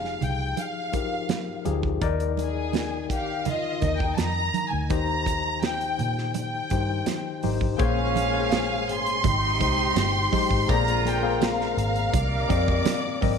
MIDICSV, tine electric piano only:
0, 0, Header, 1, 2, 480
1, 0, Start_track
1, 0, Key_signature, -3, "major"
1, 0, Tempo, 722892
1, 1339, Time_signature, 4, 2, 24, 8
1, 8887, End_track
2, 0, Start_track
2, 0, Title_t, "Tine electric piano"
2, 0, Program_c, 0, 4
2, 0, Control_c, 0, 64, 127
2, 0, Note_on_c, 0, 53, 84
2, 0, Note_on_c, 0, 63, 76
2, 0, Note_on_c, 0, 67, 78
2, 0, Note_on_c, 0, 68, 96
2, 69, Note_off_c, 0, 53, 0
2, 70, Note_off_c, 0, 63, 0
2, 71, Note_off_c, 0, 67, 0
2, 72, Note_off_c, 0, 68, 0
2, 612, Note_on_c, 0, 53, 62
2, 612, Note_on_c, 0, 63, 58
2, 617, Note_on_c, 0, 67, 62
2, 617, Note_on_c, 0, 70, 71
2, 941, Note_off_c, 0, 53, 0
2, 941, Note_off_c, 0, 63, 0
2, 944, Note_off_c, 0, 67, 0
2, 944, Note_off_c, 0, 70, 0
2, 1093, Note_on_c, 0, 53, 79
2, 1095, Note_on_c, 0, 63, 67
2, 1097, Note_on_c, 0, 67, 71
2, 1100, Note_on_c, 0, 68, 87
2, 1259, Note_off_c, 0, 53, 0
2, 1260, Note_off_c, 0, 63, 0
2, 1261, Note_off_c, 0, 67, 0
2, 1262, Note_off_c, 0, 68, 0
2, 1334, Note_on_c, 0, 51, 107
2, 1339, Note_on_c, 0, 63, 95
2, 1340, Note_on_c, 0, 70, 97
2, 1342, Note_on_c, 0, 74, 114
2, 1349, Control_c, 0, 64, 0
2, 1476, Control_c, 0, 64, 127
2, 1987, Note_off_c, 0, 51, 0
2, 1989, Note_off_c, 0, 63, 0
2, 1990, Note_off_c, 0, 70, 0
2, 1991, Note_off_c, 0, 74, 0
2, 2527, Note_on_c, 0, 51, 68
2, 2533, Note_on_c, 0, 63, 60
2, 2535, Note_on_c, 0, 70, 56
2, 2536, Note_on_c, 0, 75, 67
2, 3021, Note_off_c, 0, 51, 0
2, 3024, Note_off_c, 0, 63, 0
2, 3024, Note_off_c, 0, 70, 0
2, 3025, Note_off_c, 0, 75, 0
2, 3252, Note_on_c, 0, 51, 83
2, 3253, Note_on_c, 0, 63, 82
2, 3255, Note_on_c, 0, 67, 76
2, 3261, Note_on_c, 0, 72, 91
2, 3266, Control_c, 0, 64, 0
2, 3393, Control_c, 0, 64, 127
2, 3905, Note_off_c, 0, 51, 0
2, 3906, Note_off_c, 0, 63, 0
2, 3907, Note_off_c, 0, 67, 0
2, 3910, Note_off_c, 0, 72, 0
2, 4452, Note_on_c, 0, 51, 68
2, 4455, Note_on_c, 0, 63, 59
2, 4458, Note_on_c, 0, 67, 54
2, 4462, Note_on_c, 0, 72, 65
2, 4780, Note_off_c, 0, 51, 0
2, 4782, Note_off_c, 0, 63, 0
2, 4783, Note_off_c, 0, 67, 0
2, 4785, Note_off_c, 0, 72, 0
2, 4934, Note_on_c, 0, 51, 75
2, 4937, Note_on_c, 0, 63, 70
2, 4938, Note_on_c, 0, 67, 68
2, 4940, Note_on_c, 0, 72, 77
2, 5099, Note_off_c, 0, 51, 0
2, 5100, Note_off_c, 0, 63, 0
2, 5100, Note_off_c, 0, 67, 0
2, 5101, Note_off_c, 0, 72, 0
2, 5166, Note_on_c, 0, 58, 97
2, 5167, Note_on_c, 0, 68, 87
2, 5171, Note_on_c, 0, 72, 81
2, 5173, Note_on_c, 0, 73, 100
2, 5186, Control_c, 0, 64, 0
2, 5317, Control_c, 0, 64, 127
2, 5416, Note_off_c, 0, 58, 0
2, 5416, Note_off_c, 0, 68, 0
2, 5418, Note_off_c, 0, 72, 0
2, 5420, Note_off_c, 0, 73, 0
2, 5529, Note_on_c, 0, 58, 69
2, 5533, Note_on_c, 0, 68, 66
2, 5535, Note_on_c, 0, 72, 63
2, 5539, Note_on_c, 0, 73, 79
2, 6103, Note_off_c, 0, 58, 0
2, 6105, Note_off_c, 0, 68, 0
2, 6106, Note_off_c, 0, 72, 0
2, 6108, Note_off_c, 0, 73, 0
2, 6148, Control_c, 0, 64, 0
2, 6266, Control_c, 0, 64, 127
2, 6372, Note_on_c, 0, 56, 69
2, 6373, Note_on_c, 0, 63, 67
2, 6378, Note_on_c, 0, 72, 78
2, 6379, Note_on_c, 0, 67, 64
2, 6701, Note_off_c, 0, 56, 0
2, 6701, Note_off_c, 0, 63, 0
2, 6704, Note_off_c, 0, 67, 0
2, 6704, Note_off_c, 0, 72, 0
2, 6851, Note_on_c, 0, 56, 81
2, 6856, Note_on_c, 0, 63, 73
2, 6856, Note_on_c, 0, 67, 68
2, 6860, Note_on_c, 0, 72, 83
2, 7018, Note_off_c, 0, 56, 0
2, 7020, Note_off_c, 0, 63, 0
2, 7020, Note_off_c, 0, 67, 0
2, 7022, Note_off_c, 0, 72, 0
2, 7092, Note_on_c, 0, 58, 92
2, 7098, Note_on_c, 0, 68, 91
2, 7100, Note_on_c, 0, 72, 82
2, 7102, Note_on_c, 0, 74, 100
2, 7107, Control_c, 0, 64, 0
2, 7225, Control_c, 0, 64, 127
2, 7340, Note_off_c, 0, 58, 0
2, 7343, Note_off_c, 0, 68, 0
2, 7344, Note_off_c, 0, 72, 0
2, 7345, Note_off_c, 0, 74, 0
2, 7453, Note_on_c, 0, 58, 77
2, 7455, Note_on_c, 0, 68, 73
2, 7455, Note_on_c, 0, 72, 70
2, 7458, Note_on_c, 0, 77, 85
2, 8026, Note_off_c, 0, 58, 0
2, 8027, Note_off_c, 0, 68, 0
2, 8027, Note_off_c, 0, 72, 0
2, 8029, Note_off_c, 0, 77, 0
2, 8069, Control_c, 0, 64, 0
2, 8185, Control_c, 0, 64, 127
2, 8294, Note_on_c, 0, 60, 86
2, 8295, Note_on_c, 0, 70, 74
2, 8299, Note_on_c, 0, 74, 82
2, 8299, Note_on_c, 0, 75, 96
2, 8623, Note_off_c, 0, 60, 0
2, 8623, Note_off_c, 0, 70, 0
2, 8625, Note_off_c, 0, 74, 0
2, 8625, Note_off_c, 0, 75, 0
2, 8774, Note_on_c, 0, 60, 80
2, 8779, Note_on_c, 0, 70, 73
2, 8780, Note_on_c, 0, 74, 71
2, 8782, Note_on_c, 0, 75, 93
2, 8887, Note_off_c, 0, 60, 0
2, 8887, Note_off_c, 0, 70, 0
2, 8887, Note_off_c, 0, 74, 0
2, 8887, Note_off_c, 0, 75, 0
2, 8887, End_track
0, 0, End_of_file